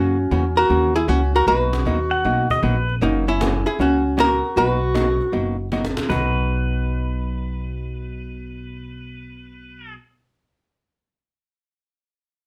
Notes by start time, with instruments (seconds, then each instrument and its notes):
Already playing: upright bass F#2, hollow-body jazz guitar C#3 E3 A#3 C#4 F#4, clarinet C#4
0.31 upright bass E2, hollow-body jazz guitar C#3 E3 A#3 C#4 F#4, cajon slap
0.57 clarinet F#4, hollow-body jazz guitar F#4 A#4, cajon slap
0.70 upright bass D#2, hollow-body jazz guitar C#3 E3 A#3 C#4 F#4, cajon slap
0.96 clarinet E4, hollow-body jazz guitar E4 G#4
1.08 upright bass C#2, hollow-body jazz guitar C#3 E3 A#3 C#4 F#4, clarinet C#4, cajon slap
1.34 clarinet F#4, hollow-body jazz guitar F#4 A#4
1.47 upright bass B1, hollow-body jazz guitar B2 F#3 A#3 D#4 F#4 B4, clarinet F#4, cajon slap
1.73 cajon slap
1.85 upright bass D#2, hollow-body jazz guitar B2 F#3 A#3 D#4 F#4, cajon slap
2.11 pedal steel guitar F#5, cajon slap
2.25 upright bass B1, hollow-body jazz guitar B2 F#3 A#3 D#4 F#4, cajon slap
2.50 pedal steel guitar D#5, muted upright bass stroke, cajon bass
2.63 upright bass A#1, hollow-body jazz guitar B2 F#3 A#3 D#4 F#4, pedal steel guitar B4, cajon slap
2.89 cajon slap
3.01 upright bass F#1, hollow-body jazz guitar C#3 E3 A#3 C#4 D#4 F#4, clarinet A#3
3.28 hollow-body jazz guitar C#4 E4, clarinet C#4
3.40 hollow-body jazz guitar C#3 E3 A#3 C#4 F#4, cajon slap
3.66 hollow-body jazz guitar E4 G#4, clarinet E4, cajon slap
3.79 upright bass C#2, hollow-body jazz guitar C#3 E3 A#3 C#4 F#4, clarinet C#4, cajon slap
4.17 hollow-body jazz guitar C#3 E3 A#3 C#4 F#4 A#4, cajon slap
4.23 clarinet F#4
4.44 cajon slap
4.56 upright bass B1, hollow-body jazz guitar B2 F#3 A#3 D#4 F#4 B4, clarinet F#4, cajon slap
4.94 hollow-body jazz guitar B2 F#3 A#3 D#4 F#4, cajon slap
5.21 cajon slap
5.32 upright bass F#1, hollow-body jazz guitar B2 F#3 A#3 D#4 F#4, cajon slap
5.72 hollow-body jazz guitar B2 F#3 A#3 D#4 F#4, cajon slap
5.85 cajon slap
5.97 cajon slap
6.09 upright bass B1, hollow-body jazz guitar B2 F#3 D#4 F#4, pedal steel guitar B4, cajon bass